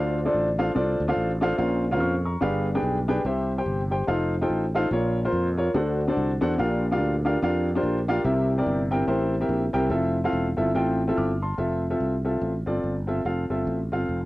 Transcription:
Already playing: fretless electric bass D2, upright piano D3 D4 F4 A4 C5 F5
0.25 upright piano D4 F4 A4 C5 D5
0.34 fretless electric bass A1
0.58 upright piano D4 F4 A4 C5 F5
0.75 fretless electric bass C2, upright piano D4 F4 A4 C5 D5
1.00 fretless electric bass D2
1.08 upright piano D4 F4 A4 C5 F5
1.16 fretless electric bass A1
1.41 upright piano D4 F4 A4 C5 F5
1.57 fretless electric bass A#1, upright piano A#2 C#4 F4 A#4 C5 F5
1.91 upright piano C#4 F4 A#4 C5 F5
2.00 fretless electric bass F2, upright piano C#6 F6
2.25 upright piano A#5 C#6
2.41 fretless electric bass G1, upright piano G2 D4 G4 G#4 B4 F5
2.75 upright piano D4 G4 G#4 B4 G5
2.82 fretless electric bass B1
3.08 upright piano D4 G4 G#4 B4 G5
3.25 fretless electric bass C2, upright piano C3 G4 C5 E5
3.58 upright piano G4 C5 G5
3.66 fretless electric bass G1
3.90 upright piano G4 C5 G5
4.07 fretless electric bass F1, upright piano D#4 F4 A4 C5 F5
4.41 upright piano D#4 F4 A4 C5 G5
4.50 fretless electric bass A1
4.75 upright piano D#4 F4 A4 C5 F5
4.91 fretless electric bass A#1, upright piano A#2 F4 A#4 C#5
5.25 upright piano F4 A#4 C5
5.32 fretless electric bass F2
5.58 upright piano F4 A#4 C#5
5.74 fretless electric bass D2, upright piano D3 D4 F#4 A4 C5 F#5
6.08 upright piano D4 F#4 A4 C5 D5
6.17 fretless electric bass C2
6.41 fretless electric bass E2, upright piano D4 F#4 A4 C5 F#5
6.58 fretless electric bass A#1, upright piano A#2 D4 F4 G4 A#4 F5
6.91 upright piano D4 F4 G4 A#4 F5
7.00 fretless electric bass D2
7.25 upright piano D4 F4 G4 A#4 F5
7.42 fretless electric bass F2, upright piano D4 F4 G4 A#4 F5
7.75 upright piano D4 F4 G4 A#4 C5
7.83 fretless electric bass A#1
8.08 upright piano D4 F4 G4 A#4 F5
8.24 fretless electric bass C2, upright piano C3 C4 E4 G4 A#4 E5
8.58 upright piano C4 E4 G4 A#4 D5
8.66 fretless electric bass G1
8.91 upright piano C4 E4 G4 A#4 G5
9.07 fretless electric bass A1, upright piano C4 E4 G4 A#4 C5
9.41 upright piano C4 E4 G4 A#4 E5
9.49 fretless electric bass A#1
9.73 fretless electric bass C2, upright piano C4 E4 G4 A#4 G5
9.90 fretless electric bass F1, upright piano C4 E4 F4 A4 E5
10.24 upright piano C4 E4 F4 A4 F5
10.33 fretless electric bass E1
10.57 fretless electric bass G1, upright piano C4 E4 F4 A4 E5
10.75 fretless electric bass A1, upright piano C4 E4 F4 A4 G5
11.07 upright piano C4 E4 F4 A4 E5
11.17 fretless electric bass G1, upright piano D6 F6
11.42 upright piano A5 C6
11.58 fretless electric bass F1, upright piano C4 F4 A4 E5
11.90 upright piano C4 F4 A4 E5
12.00 fretless electric bass C2
12.24 upright piano C4 F4 A4 E5
12.41 fretless electric bass A1
12.66 fretless electric bass G1, upright piano C4 F4 A4 D5
12.84 fretless electric bass G1
13.07 upright piano C4 F4 A4 E5
13.25 fretless electric bass F1, upright piano C4 F4 A4 F5
13.50 fretless electric bass G1, upright piano C4 F4 A4 E5
13.67 fretless electric bass A1
13.92 fretless electric bass G1, upright piano C4 F4 A4 F5
14.09 fretless electric bass F1

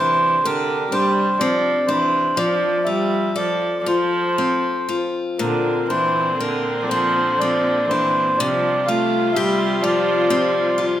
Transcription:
Already playing: steel-string acoustic guitar C3 D4 G4
0.00 viola E3, accordion C5
0.45 viola D3, steel-string acoustic guitar G4, accordion A#4
0.92 viola G3, steel-string acoustic guitar D4, accordion C5
1.39 viola F3, steel-string acoustic guitar C4, accordion D5
1.86 steel-string acoustic guitar D4, accordion C5
1.91 viola E3
2.37 steel-string acoustic guitar F3, viola F3, accordion D5
2.84 steel-string acoustic guitar F4, accordion E5
2.88 viola G3
3.35 steel-string acoustic guitar A4, accordion D5
3.39 viola F3
3.80 viola F3, accordion D5
3.86 steel-string acoustic guitar F4, accordion C5
3.91 viola F3
4.38 steel-string acoustic guitar C4
4.89 steel-string acoustic guitar F4
5.39 steel-string acoustic guitar A#2, string section D3 A#3 C4, viola D3, accordion A#4
5.88 viola E3, steel-string acoustic guitar D4, accordion C5
6.39 viola D3, accordion A#4, steel-string acoustic guitar A#4
6.81 viola F3, accordion D5
6.87 viola F3, steel-string acoustic guitar D4, accordion C5
7.39 viola F3, steel-string acoustic guitar C4, accordion D5
7.89 viola E3, steel-string acoustic guitar D4, accordion C5
8.38 string section C3 G3 F4, steel-string acoustic guitar C3, viola F3, accordion D5
8.87 viola A3, steel-string acoustic guitar F4, accordion F5
9.33 steel-string acoustic guitar G4, accordion E5
9.38 viola G3
9.82 viola F3, steel-string acoustic guitar F4, accordion D5
10.30 steel-string acoustic guitar C4
10.78 steel-string acoustic guitar F4

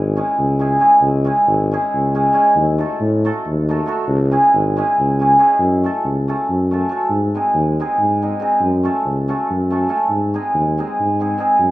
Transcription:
Already playing: tuba G#1, hammered dulcimer G#3
0.16 hammered dulcimer G#3 C#4 E4 G#4
0.39 tuba C#2
0.59 hammered dulcimer G#3 C#4 E4 G#4
0.79 hammered dulcimer G#3 C#4 E4 G#4
1.01 tuba C#2
1.25 hammered dulcimer G#3 C#4 E4 G#4
1.47 tuba G#1
1.71 hammered dulcimer G#3 C#4 E4 G#4
1.94 tuba C#2
2.15 hammered dulcimer G#3 C#4 E4 G#4
2.33 hammered dulcimer G#3 C#4 E4 G#4
2.55 tuba D#2
2.78 hammered dulcimer A3 D#4 F#4 A4
3.01 tuba A2
3.25 hammered dulcimer A3 D#4 F#4 A4
3.47 tuba D#2
3.68 hammered dulcimer A3 D#4 F#4 A4
3.86 hammered dulcimer A3 D#4 F#4 A4
4.08 tuba C#2
4.31 hammered dulcimer G#3 C#4 E4 G#4
4.53 tuba G#1
4.76 hammered dulcimer G#3 C#4 E4 G#4
4.99 tuba C#2
5.20 hammered dulcimer G#3 C#4 E4 G#4
5.38 hammered dulcimer G#3 C#4 E4 G#4
5.59 tuba F#2
5.83 hammered dulcimer A3 C#4 F#4 A4
6.05 tuba C#2
6.28 hammered dulcimer A3 C#4 F#4 A4
6.49 tuba F#2
6.71 hammered dulcimer A3 C#4 F#4 A4
6.89 hammered dulcimer A3 C#4 F#4 A4
7.10 tuba G#2
7.34 hammered dulcimer G#3 C4 D#4 G#4
7.54 tuba D#2
7.80 hammered dulcimer G#3 C4 D#4 G#4
7.99 tuba G#2
8.22 hammered dulcimer G#3 C4 D#4 G#4
8.40 hammered dulcimer G#3 C4 D#4 G#4
8.60 tuba F#2
8.83 hammered dulcimer A3 C#4 F#4 A4
9.05 tuba C#2
9.28 hammered dulcimer A3 C#4 F#4 A4
9.51 tuba F#2
9.70 hammered dulcimer A3 C#4 F#4 A4
9.89 hammered dulcimer A3 C#4 F#4 A4
10.09 tuba G#2
10.34 hammered dulcimer G#3 C4 D#4 G#4
10.54 tuba D#2
10.78 hammered dulcimer G#3 C4 D#4 G#4
11.00 tuba G#2
11.20 hammered dulcimer G#3 C4 D#4 G#4
11.38 hammered dulcimer G#3 C4 D#4 G#4
11.59 tuba F#2

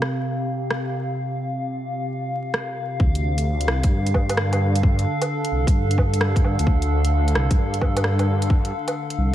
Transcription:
Already playing: ambient pad C3 C4 G4 F5
0.02 cross-stick
0.71 cross-stick
2.54 cross-stick
3.00 detuned saw bass D2, ambient pad D3, kick
3.15 closed hi-hat
3.31 ambient pad D4
3.38 closed hi-hat
3.55 ambient pad A4
3.61 closed hi-hat
3.68 detuned saw bass C2, cross-stick
3.83 detuned saw bass G2, kick, closed hi-hat
4.06 closed hi-hat
4.14 kick, low woodblock
4.29 closed hi-hat, low woodblock
4.37 cross-stick
4.53 closed hi-hat, low woodblock
4.75 closed hi-hat
4.83 kick
4.99 closed hi-hat
5.22 closed hi-hat, low woodblock
5.45 closed hi-hat
5.51 detuned saw bass C2
5.67 detuned saw bass G2, kick, closed hi-hat
5.91 closed hi-hat
5.98 kick, low woodblock
6.14 closed hi-hat
6.21 cross-stick
6.36 kick, closed hi-hat
6.44 low woodblock
6.59 detuned saw bass D2, closed hi-hat
6.67 detuned saw bass D2, kick
6.82 closed hi-hat
7.05 closed hi-hat
7.28 closed hi-hat
7.35 detuned saw bass C2, cross-stick
7.50 detuned saw bass G2, kick, closed hi-hat
7.74 closed hi-hat
7.81 kick, low woodblock
7.97 closed hi-hat, low woodblock
8.04 cross-stick
8.19 closed hi-hat, low woodblock
8.42 closed hi-hat
8.50 kick
8.65 closed hi-hat
8.88 closed hi-hat, low woodblock
9.10 closed hi-hat
9.18 detuned saw bass C2

